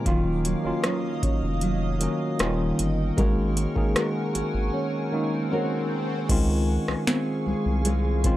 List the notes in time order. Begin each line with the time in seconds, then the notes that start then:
Already playing: A#2 A#3 F5
0.05 D#1 D#3 F#3 A#3 C#4 F4 C#5 D#5 D#6, kick, closed hi-hat
0.45 F#3, closed hi-hat
0.64 F1 D#3 F#3 A#3 C#4 F4
0.84 F#3 C#4 F4, cross-stick, closed hi-hat
1.23 F1 C#4, kick, closed hi-hat
1.43 F1
1.61 F#3, closed hi-hat
2.00 D#3 F#3 A#3 C#4 F#4, closed hi-hat
2.39 D#1 D#3 G3 A#3 C#4 F4 A#4 C#6, cross-stick, closed hi-hat
2.79 G1, closed hi-hat
3.17 G#1 D#3 G#3 A#3 C#4 F#4 A#4 F#5 G#5, kick, closed hi-hat, swell
3.56 C#4, closed hi-hat
3.75 G#1 D#3 G#3 A#3 C#4 G#4, kick
3.95 C#4 F#4 A#4, cross-stick, closed hi-hat
4.34 G#1 F#4, closed hi-hat
4.54 G#1
4.73 C#4
5.12 D#3 G#3 A#3 C#4 D#4
5.51 C#4 F#4 A#4
6.28 C#2 D#3 G#3 C4 C#4 F4 G#4 F5 G#5 C#6, kick, closed hi-hat, crash
6.88 C2, cross-stick
7.07 C4, snare, closed hi-hat
7.46 C2 G#3
7.66 C2
7.85 G#3 C4 F4, closed hi-hat
8.23 D#3 G#3 C4 C#4 F4, kick, closed hi-hat